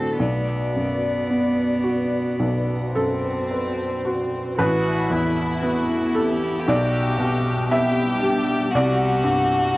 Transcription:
0.00 0.16 D2 soft
0.00 0.24 A2 soft
0.00 0.19 A3 medium
0.00 0.23 A3 soft
0.00 0.16 C4 medium
0.00 0.18 F#4 medium
0.00 0.20 F#4 soft
0.00 0.20 A4 medium
0.00 0.19 D5 medium
0.19 2.36 B1 soft
0.19 4.00 B3 medium
0.19 4.54 F#4 medium
0.19 4.58 B4 medium
0.19 2.95 D5 soft
0.19 4.54 D5 medium
0.75 1.63 F#2 soft
1.30 2.18 B3 soft
1.84 2.73 F#4 soft
2.39 4.54 B1 soft
2.95 3.83 F#2 soft
2.95 4.54 C4 medium
2.95 4.54 A4 medium
3.51 4.37 B4 soft
4.05 4.59 F#4 soft
4.58 6.63 A1 medium
4.58 8.70 B3 medium
4.58 6.64 E4 medium
4.58 5.14 F#4 medium
4.58 6.63 A4 medium
4.58 6.63 B4 medium
4.58 9.77 E5 medium
5.10 5.94 E2 medium
5.10 5.63 E4 medium
5.63 6.46 B3 medium
5.63 6.17 F#4 medium
6.15 6.70 G4 medium
6.15 6.67 A4 medium
6.67 8.70 B1 medium
6.67 9.77 G3 medium
6.67 7.73 F#4 medium
6.67 7.68 G4 medium
6.67 7.67 D5 medium
7.18 8.01 B2 medium
7.69 8.53 B3 soft
7.69 8.22 E4 medium
7.69 8.71 G4 medium
7.69 8.70 E5 loud
8.21 8.73 D4 medium
8.21 8.74 G4 medium
8.72 9.77 C2 medium
8.72 9.77 F#4 medium
8.72 9.77 G4 medium
8.72 9.77 D5 loud
8.76 9.77 C4 medium
9.24 9.77 G2 medium

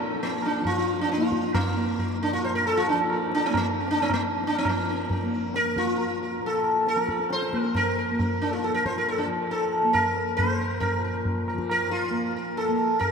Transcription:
0.00 2.33 A#2 medium
0.00 0.60 F3 medium
0.00 1.18 A#3 medium
0.20 0.45 A#3 medium
0.20 tabla tin medium
0.42 0.66 D4 medium
0.42 tabla na medium
0.61 2.92 F3 medium
0.65 0.77 F4 medium
0.65 tabla tin medium
0.65 tabla ge medium
0.78 1.00 F4 medium
1.01 1.11 D4 medium
1.09 1.57 F4 medium
1.09 tabla te medium
1.18 1.77 A#3 medium
1.18 tabla te medium
1.32 tabla ke medium
1.43 tabla te medium
1.55 2.17 A#3 medium
1.55 tabla na loud
1.55 tabla ge medium
1.77 3.50 A#3 medium
1.77 1.98 A#4 soft
1.99 2.20 A#4 soft
1.99 tabla tin medium
1.99 tabla ge medium
2.23 2.33 D4 medium
2.33 6.39 A#2 medium
2.33 2.43 F4 medium
2.44 2.55 C5 medium
2.44 tabla na medium
2.55 2.66 A#4 medium
2.66 2.78 A4 loud
2.66 tabla na medium
2.77 2.89 F4 medium
2.88 4.65 F3 medium
2.88 2.99 D4 medium
2.88 tabla tin medium
3.10 3.32 A#4 soft
3.10 tabla na medium
3.32 3.45 D4 loud
3.32 tabla te medium
3.43 3.56 C4 medium
3.43 tabla na medium
3.50 4.08 A#3 medium
3.54 3.66 A#3 medium
3.54 tabla na loud
3.54 tabla ge medium
3.80 3.99 A#4 soft
3.88 4.01 D4 medium
3.88 tabla te medium
3.98 4.11 C4 medium
3.98 tabla na medium
4.08 5.23 A#3 medium
4.08 tabla na medium
4.08 tabla ge medium
4.13 4.22 A#3 medium
4.44 4.57 D4 medium
4.44 tabla te medium
4.55 4.68 C4 medium
4.55 tabla na medium
4.65 6.95 F3 medium
4.65 5.30 A#3 medium
4.65 tabla na medium
4.65 tabla ge medium
4.91 5.10 A#4 soft
5.10 5.32 A#4 soft
5.10 tabla tin medium
5.10 tabla ge medium
5.23 5.81 A#3 medium
5.34 5.54 A#4 soft
5.54 5.78 A#4 loud
5.54 tabla te medium
5.66 tabla te medium
5.77 6.18 F4 medium
5.77 tabla ke medium
5.81 7.54 A#3 medium
5.87 tabla te soft
5.98 6.20 A#4 soft
5.98 tabla tin medium
6.23 6.42 A#4 soft
6.39 8.69 A#2 medium
6.39 tabla tin medium
6.46 6.88 A4 medium
6.64 tabla na medium
6.87 7.09 A4 loud
6.87 tabla te medium
6.95 9.25 F3 medium
6.95 tabla te medium
7.09 7.30 A#4 soft
7.09 tabla ke medium
7.19 tabla te soft
7.30 7.61 C5 medium
7.30 tabla te medium
7.42 tabla te medium
7.53 8.11 A#3 medium
7.53 7.61 A#4 soft
7.53 tabla ke medium
7.61 7.76 A#4 medium
7.61 tabla te medium
7.75 7.96 A#4 medium
7.75 tabla na medium
7.75 tabla ge medium
7.98 8.18 A#4 soft
8.11 9.84 A#3 medium
8.19 8.40 A#4 soft
8.19 tabla tin medium
8.19 tabla ge medium
8.42 8.49 D4 medium
8.50 8.64 F4 medium
8.50 8.52 A4 soft
8.63 8.74 A4 medium
8.63 tabla te medium
8.69 10.97 A#2 medium
8.74 8.85 A#4 medium
8.74 tabla te medium
8.86 8.97 C5 medium
8.86 tabla ke medium
8.96 9.08 A#4 medium
8.96 tabla te medium
9.07 9.19 A4 medium
9.07 tabla tin medium
9.18 9.28 D4 medium
9.26 11.53 F3 medium
9.51 9.92 A4 medium
9.51 tabla tin medium
9.73 tabla na medium
9.84 10.41 A#3 medium
9.93 10.36 A#4 medium
9.93 tabla na medium
9.93 tabla ge medium
10.17 tabla te medium
10.37 10.80 C5 medium
10.37 tabla na medium
10.37 tabla ge medium
10.41 12.11 A#3 medium
10.60 10.79 A#4 soft
10.60 tabla te medium
10.80 11.03 A#4 medium
10.80 tabla na loud
10.80 tabla ge medium
10.98 13.12 A#2 medium
11.04 11.25 A#4 soft
11.25 tabla tin medium
11.25 tabla ge medium
11.48 11.69 A#4 soft
11.48 tabla na medium
11.53 13.12 F3 medium
11.58 tabla ke medium
11.70 11.91 A#4 medium
11.70 tabla na medium
11.91 12.32 F4 medium
12.11 12.68 A#3 medium
12.11 tabla tin medium
12.36 12.56 A#4 soft
12.57 12.99 A4 medium
12.57 tabla tin medium
12.68 13.12 A#3 medium
12.79 tabla na medium
12.99 13.12 A#4 medium
12.99 tabla na medium
12.99 tabla ge medium

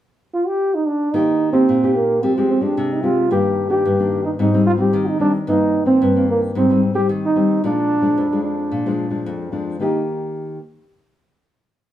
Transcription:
0.34 0.49 F4 medium
0.47 0.76 G4 loud
0.75 0.89 D#4 medium
0.87 1.16 D4 medium
1.14 1.66 D#3 medium
1.14 1.50 A#3 medium
1.14 1.52 D#4 loud
1.14 1.51 D#4 medium
1.14 1.51 G4 medium
1.53 1.77 A#3 medium
1.53 1.96 C4 loud
1.53 1.77 D#4 medium
1.53 1.77 G4 medium
1.69 2.20 A#2 medium
1.83 2.21 A#3 medium
1.83 2.21 D#4 medium
1.83 2.21 G4 medium
1.95 2.25 A#3 medium
2.23 2.74 F3 medium
2.23 2.31 G#3 medium
2.23 2.31 C4 medium
2.23 2.49 C4 medium
2.23 2.31 G4 medium
2.37 2.60 G#3 medium
2.37 2.60 C4 medium
2.37 2.60 G4 medium
2.49 2.64 C4 medium
2.61 2.98 G#3 medium
2.61 2.99 C4 medium
2.61 2.94 D4 medium
2.61 2.99 G4 medium
2.77 3.28 C3 medium
2.92 3.05 D#4 medium
3.03 3.26 G#3 medium
3.03 3.26 C4 medium
3.03 3.31 F4 medium
3.03 3.26 G4 medium
3.31 3.82 G2 medium
3.31 3.67 D#3 medium
3.31 3.67 A#3 medium
3.31 3.68 D4 medium
3.31 3.69 G4 loud
3.69 3.93 D#3 soft
3.69 3.93 A#3 medium
3.69 3.93 D4 medium
3.69 4.21 G4 medium
3.85 4.37 G2 medium
3.99 4.37 D#3 medium
3.99 4.38 A#3 medium
3.99 4.38 D4 medium
4.25 4.31 D#4 medium
4.39 4.91 G#2 medium
4.39 4.48 G3 soft
4.39 4.49 C4 medium
4.39 4.49 D#4 medium
4.39 4.65 D#4 medium
4.54 4.76 G3 medium
4.54 4.76 C4 medium
4.54 4.76 D#4 medium
4.66 4.72 F4 loud
4.77 5.15 G3 medium
4.77 5.15 C4 medium
4.77 5.15 D#4 medium
4.77 5.10 G4 medium
4.93 5.45 D#3 medium
5.09 5.20 D#4 medium
5.19 5.36 G3 medium
5.19 5.36 C4 medium
5.19 5.33 D4 medium
5.19 5.36 D#4 medium
5.47 5.99 G2 medium
5.47 5.84 D#3 medium
5.47 5.84 A#3 medium
5.47 5.84 C4 medium
5.47 5.86 D#4 medium
5.85 6.09 D#3 medium
5.85 6.10 A#3 medium
5.85 6.10 C4 medium
5.85 6.25 C4 medium
6.02 6.53 G2 medium
6.16 6.54 D#3 medium
6.16 6.54 A#3 medium
6.16 6.54 C4 medium
6.29 6.41 A#3 medium
6.55 7.07 G#2 medium
6.55 6.64 G3 medium
6.55 6.64 C4 medium
6.55 6.82 C4 medium
6.55 6.64 D#4 medium
6.70 6.92 G3 medium
6.70 6.92 C4 medium
6.70 6.93 D#4 medium
6.94 7.31 G3 soft
6.94 7.31 C4 medium
6.94 7.32 D#4 medium
6.94 7.08 G4 medium
7.09 7.61 D#3 medium
7.25 7.62 D#4 medium
7.36 7.59 G3 medium
7.36 7.59 C4 medium
7.36 7.59 D#4 medium
7.64 8.15 A#2 medium
7.64 8.00 F3 medium
7.64 8.00 G#3 medium
7.64 8.00 D4 medium
7.64 8.42 D4 loud
8.02 8.26 F3 medium
8.02 8.26 G#3 medium
8.02 8.26 D4 medium
8.18 8.69 F2 medium
8.32 8.82 F3 medium
8.32 8.82 G#3 medium
8.32 8.82 D4 medium
8.44 9.22 D4 medium
8.71 9.23 A#2 medium
8.86 9.09 F3 medium
8.86 9.09 G#3 medium
8.86 9.09 D4 medium
9.10 9.48 F3 medium
9.10 9.48 G#3 soft
9.10 9.48 D4 medium
9.26 9.78 F2 medium
9.52 9.75 F3 medium
9.52 9.76 G#3 medium
9.52 9.76 D4 medium
9.80 10.58 D#3 medium
9.80 10.58 A#3 medium
9.80 10.06 D#4 medium
9.80 10.58 D#4 medium
9.80 10.58 G4 medium

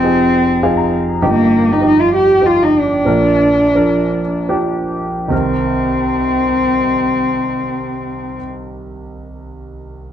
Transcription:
0.00 1.18 F1 soft
0.00 1.18 F2 soft
0.00 0.03 F3 medium
0.00 0.39 F3 medium
0.00 0.90 C4 medium
0.00 0.04 D#4 medium
0.00 0.04 G#4 medium
0.04 0.40 D#4 soft
0.04 0.40 G#4 medium
0.63 1.21 F3 medium
0.63 1.21 D#4 medium
0.63 1.22 G#4 medium
0.63 0.77 F5 medium
0.77 1.19 A#5 soft
1.22 3.03 G1 soft
1.22 3.03 G2 soft
1.22 1.70 F3 medium
1.22 1.70 D#4 medium
1.22 1.70 G4 medium
1.28 1.74 A#3 medium
1.72 1.85 D#4 medium
1.81 2.18 F3 soft
1.81 2.18 D#4 soft
1.81 2.18 G4 soft
1.86 2.02 D#4 medium
2.01 2.14 F4 medium
2.15 2.47 G4 medium
2.42 3.04 F3 medium
2.42 3.07 D#4 soft
2.42 3.06 G4 medium
2.46 2.65 F4 medium
2.63 2.81 D#4 medium
2.80 4.52 D4 medium
3.05 5.27 A#1 soft
3.05 5.27 A#2 soft
3.05 3.60 F3 medium
3.05 3.61 D4 medium
3.05 3.61 A#4 medium
3.75 4.19 F3 soft
3.75 4.19 D4 soft
3.75 4.19 A#4 medium
4.49 5.32 F3 medium
4.49 5.32 D4 soft
4.49 5.32 G4 medium
5.28 8.36 C2 medium
5.28 8.34 D#3 medium
5.28 8.36 C4 soft
5.28 8.38 A#4 medium
5.35 8.41 C4 medium

